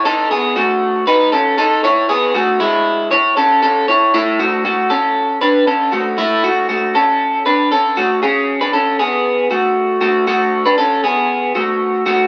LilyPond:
\new Staff \with { instrumentName = "Clean electric guitar" } { \time 4/4 \key fis \minor \tempo 4 = 117 <dis' a'>8 <b gis'>8 <a fis'>4 <dis' b'>8 <cis' a'>8 <dis' a'>8 <e' cis''>8 | <b gis'>8 <a fis'>8 <gis e'>4 <e' cis''>8 <cis' a'>8 <cis' a'>8 <e' cis''>8 | <a e'>8 <a fis'>8 <a fis'>8 <cis' a'>4 <d' b'>8 <cis' a'>8 <a fis'>8 | <a e'>8 <a fis'>8 <a fis'>8 <cis' a'>4 <d' b'>8 <cis' a'>8 <a fis'>8 |
<cis' gis'>8. <d' b'>16 <cis' a'>8 <b gis'>4 <a fis'>4 <a fis'>8 | <a fis'>8. <d' b'>16 <cis' a'>8 <b gis'>4 <a fis'>4 <a fis'>8 | }